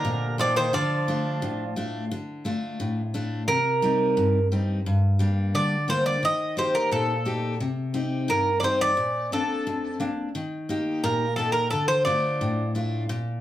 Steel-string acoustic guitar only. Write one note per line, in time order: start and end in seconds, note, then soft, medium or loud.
0.00 0.25 A#3 soft
0.00 0.26 G4 medium
0.00 0.25 D#5 soft
0.05 0.71 A#2 medium
0.38 0.66 A#3 soft
0.38 0.66 D#4 soft
0.38 0.67 G4 medium
0.73 1.40 D3 medium
1.08 1.63 A3 soft
1.08 1.63 D4 soft
1.08 1.63 F4 soft
1.42 2.09 A2 medium
1.76 2.04 A3 soft
1.76 2.04 D4 soft
1.76 2.04 F4 soft
2.11 2.78 D3 medium
2.45 3.00 A3 soft
2.45 3.00 D4 soft
2.45 3.01 F4 medium
2.80 3.46 A2 medium
3.14 3.41 A3 soft
3.14 3.42 D4 soft
3.14 3.42 F4 soft
3.48 4.15 C3 medium
3.82 4.37 G3 soft
3.82 4.38 C4 soft
3.82 4.38 D#4 soft
4.17 4.84 G2 medium
4.52 4.79 G3 soft
4.52 4.79 C4 soft
4.52 4.79 D#4 soft
4.86 5.53 G2 medium
5.19 5.75 G3 soft
5.19 5.75 A#3 soft
5.19 5.75 D4 medium
5.55 6.21 D3 medium
5.88 6.16 G3 soft
5.88 6.16 A#3 soft
5.88 6.16 D4 soft
6.23 6.90 D#3 medium
6.57 7.12 A#3 medium
6.57 7.12 D#4 soft
6.57 7.13 G4 medium
6.91 7.58 A#2 medium
7.25 7.53 A#3 soft
7.25 7.54 D#4 soft
7.25 7.54 G4 medium
7.60 8.27 C3 medium
7.94 8.49 C4 medium
7.94 8.50 D#4 soft
7.94 8.50 G4 soft
8.28 8.95 G2 medium
8.63 8.91 C4 soft
8.63 8.91 D#4 soft
8.63 8.91 G4 soft
8.97 9.32 A#2 medium
9.32 9.66 A#3 soft
9.32 9.88 C4 soft
9.32 9.88 D4 medium
9.67 9.99 F2 medium
10.00 10.28 A#3 soft
10.00 10.28 C4 soft
10.00 10.28 D4 medium
10.35 11.02 D#3 medium
10.69 11.24 A#3 soft
10.69 11.25 D#4 soft
10.69 11.25 G4 medium
11.04 11.71 A#2 medium
11.38 11.66 A#3 soft
11.38 11.66 D#4 soft
11.38 11.66 G4 medium
11.73 12.39 D3 medium
12.06 12.62 A3 soft
12.06 12.62 D4 soft
12.06 12.62 F4 medium
12.41 13.08 A2 medium
12.75 13.03 A3 soft
12.75 13.03 D4 soft
12.75 13.03 F4 medium
13.09 13.41 A#2 medium